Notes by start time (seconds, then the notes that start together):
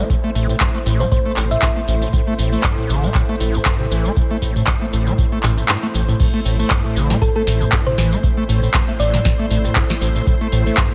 Already playing: A3 E4 C5
0.10 A2, kick, closed hi-hat, tambourine
0.24 A3, closed hi-hat
0.35 A1 A2, open hi-hat, tambourine
0.49 A2, closed hi-hat, tambourine
0.60 G2, kick, clap, closed hi-hat, tambourine
0.75 A3, closed hi-hat
0.86 A1 A2, open hi-hat, tambourine
1.00 A3 C5, closed hi-hat, mid tom, tambourine
1.12 A2 C5, kick, closed hi-hat, tambourine
1.25 A3, closed hi-hat
1.37 A1 A2, clap, mid tom, open hi-hat, tambourine
1.51 A2 E5, closed hi-hat, tambourine
1.62 G2, kick, clap, closed hi-hat, tambourine
1.76 A3, closed hi-hat
1.88 A1, open hi-hat, tambourine
2.02 A2, closed hi-hat, mid tom, tambourine
2.13 A2, kick, closed hi-hat, tambourine
2.27 A3
2.39 A1 A2, open hi-hat, tambourine
2.53 A3, closed hi-hat, tambourine
2.64 G2, kick, clap, closed hi-hat, tambourine
2.78 A2, closed hi-hat
2.89 A1 D3, open hi-hat, tambourine
3.04 A3, closed hi-hat, mid tom, tambourine
3.14 A2, kick, clap, closed hi-hat, tambourine
3.29 A3
3.40 A1 A2, mid tom, open hi-hat, tambourine
3.54 A1, closed hi-hat, tambourine
3.65 G2, kick, clap, closed hi-hat, tambourine
3.80 C3, mid tom
3.91 A1 E3, open hi-hat, tambourine
4.05 A3, closed hi-hat, tambourine
4.17 A2, kick, closed hi-hat, tambourine
4.31 A3, closed hi-hat
4.42 A1 A2, kick, open hi-hat, tambourine
4.56 A2, closed hi-hat, mid tom, tambourine
4.67 G2, kick, clap, closed hi-hat, tambourine
4.81 A3, closed hi-hat
4.93 A1 A2, open hi-hat, tambourine
5.07 A3, closed hi-hat, mid tom, tambourine
5.18 A2, kick, closed hi-hat, tambourine
5.32 A3, closed hi-hat
5.43 A1 A2, clap, mid tom, open hi-hat, tambourine
5.58 A2, closed hi-hat, tambourine
5.68 G2, clap, closed hi-hat, tambourine
5.83 A3, closed hi-hat
5.94 A1, open hi-hat, tambourine
6.08 A2, closed hi-hat, mid tom, tambourine
6.20 A2 A3 E4 C5, kick, closed hi-hat, crash, tambourine
6.34 A3, closed hi-hat
6.45 A1 A2, open hi-hat, tambourine
6.59 A3, closed hi-hat, tambourine
6.70 G2, kick, clap, closed hi-hat, tambourine
6.85 A2, closed hi-hat
6.96 A1 D3, open hi-hat, tambourine
7.10 A3, snare, closed hi-hat, mid tom, tambourine
7.22 A2 A4, kick, closed hi-hat, tambourine
7.36 A3 A4
7.47 A1 A2, snare, open hi-hat, tambourine
7.61 A1, closed hi-hat, mid tom, tambourine
7.72 G2, kick, clap, closed hi-hat, tambourine
7.87 C3 C5, closed hi-hat, mid tom
7.98 A1 E3, snare, mid tom, open hi-hat, tambourine
8.12 A3, closed hi-hat, tambourine
8.23 A2, kick, closed hi-hat, tambourine
8.37 A3, closed hi-hat
8.49 A1 A2, open hi-hat, tambourine
8.63 A2, closed hi-hat, tambourine
8.74 G2, kick, clap, closed hi-hat, tambourine
8.88 A3, closed hi-hat
9.00 A1 A2 D5, open hi-hat, tambourine
9.14 A3, snare, closed hi-hat, mid tom, tambourine
9.25 A2, kick, snare, closed hi-hat, tambourine
9.39 A3
9.50 A1 A2, open hi-hat, tambourine
9.65 A2, closed hi-hat, mid tom, tambourine
9.76 G2, kick, clap, closed hi-hat, tambourine
9.90 A3, snare, closed hi-hat
10.01 A1, open hi-hat, tambourine
10.15 A2, closed hi-hat, tambourine
10.27 A2, kick, closed hi-hat, tambourine
10.41 A3, closed hi-hat
10.52 A1 A2, open hi-hat, tambourine
10.66 A3, closed hi-hat, tambourine
10.77 G2, kick, clap, closed hi-hat, tambourine